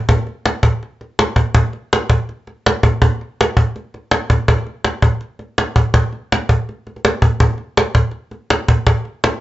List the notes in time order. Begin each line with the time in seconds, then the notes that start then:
0.09 cajon bass
0.19 cajon slap
0.27 cajon slap
0.46 cajon slap
0.63 cajon bass
0.83 cajon slap
1.01 cajon slap
1.19 cajon slap
1.36 cajon bass
1.55 cajon bass
1.66 cajon slap
1.73 cajon slap
1.93 cajon slap
2.10 cajon bass
2.29 cajon slap
2.47 cajon slap
2.66 cajon slap
2.83 cajon bass
3.02 cajon bass
3.21 cajon slap
3.41 cajon slap
3.57 cajon bass
3.76 cajon slap
3.94 cajon slap
4.11 cajon slap
4.30 cajon bass
4.48 cajon bass
4.58 cajon slap
4.67 cajon slap
4.85 cajon slap
5.02 cajon bass
5.21 cajon slap
5.39 cajon slap
5.58 cajon slap
5.76 cajon bass
5.94 cajon bass
6.12 cajon slap
6.32 cajon slap
6.49 cajon bass
6.69 cajon slap
6.87 cajon slap
6.96 cajon slap
7.05 cajon slap
7.22 cajon bass
7.40 cajon bass
7.50 cajon slap
7.58 cajon slap
7.77 cajon slap
7.95 cajon bass
8.11 cajon slap
8.31 cajon slap
8.50 cajon slap
8.68 cajon bass
8.87 cajon bass
8.97 cajon slap
9.05 cajon slap
9.24 cajon slap